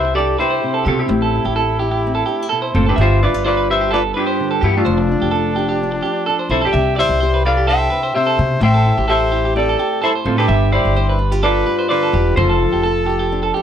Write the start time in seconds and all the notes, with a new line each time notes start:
Already playing: C2 C3 E4 G4 C5 E5
0.05 muted clean electric guitar stroke
0.15 D4 G4 A4 D5
0.38 E4 G4 B4 C5
0.51 C5
0.64 C3
0.74 A4
0.85 B2 C3 C4 F4 G4 A4
0.99 C4 E4 G4
1.09 A1 A2, muted clean electric guitar stroke
1.22 A4
1.36 E4
1.45 A1 G4
1.56 E4 A4
1.79 E4 G4
1.91 G4
2.07 C4
2.15 A4
2.26 D4 G4
2.42 E4
2.49 B2 A4
2.62 C5
2.75 F#1 A2 C4 F4 A4
2.86 D4 G4 A4 B4
2.96 G1 G2 G3 G4 E5
3.01 B3 F4 B4 C5
3.22 D4 F4 B4 D5
3.34 G1 F4
3.45 F4 B4 C5 D5
3.57 B4
3.70 F4 G4 C5 E5
3.81 G4
3.91 B3 F4 A4 B4 D5
4.14 D4 F4 G4 B4
4.27 C5
4.40 D3
4.51 A4
4.61 G2 E3 B3 E4 G4
4.77 A3 D4 F4
4.85 F1 F3 C5
4.98 muted clean electric guitar stroke
5.12 D4
5.22 F1 G4
5.31 D4 A4
5.56 D4 G4
5.69 G4
5.83 D4
5.92 muted clean electric guitar stroke
6.02 D4 G4
6.26 D4 A4
6.39 C5
6.49 B1 C4 E4 A4 C5
6.62 G4 A4 D5
6.73 C2 C3 E5
6.96 E4 G4 C5 D5 E5
7.09 C2
7.20 G4 C5
7.34 B4
7.45 E4 A4 D5 F5
7.57 G4
7.67 D4 A4 C5 E5 G5
7.90 G4 B4
8.03 C5
8.14 C3 G4 C5 E5
8.27 A4
8.38 B2 C3
8.60 A1 A2 C5 E5 G5, muted clean electric guitar stroke
8.74 A4
8.86 E4
8.98 A1 G4
9.08 G4 A4 C5 E5
9.32 E4 G4
9.45 G4
9.56 C4 G4 A4 D5
9.69 A4
9.79 G4
10.02 E4 A4 C5
10.15 C5
10.25 A2 C4 F4 A4, muted nylon-string guitar stroke
10.38 D4 G4 A4 B4
10.48 G1 G2 E5
10.72 E4 G4 C5 D5
10.85 G1
10.96 G4 C5
11.09 B4
11.19 D4
11.32 F4 G4
11.43 D4 F4 A4 B4 D5
11.66 G4 B4
11.79 C5
11.89 D3 F4 B4 D5
12.03 A4
12.13 E1 E3 G4
12.36 F1 F3 F4 A4 C5
12.49 A4
12.73 F1 G4
12.83 A4
13.06 G4 A4
13.19 G4
13.32 D4
13.43 A4
13.54 G4 A4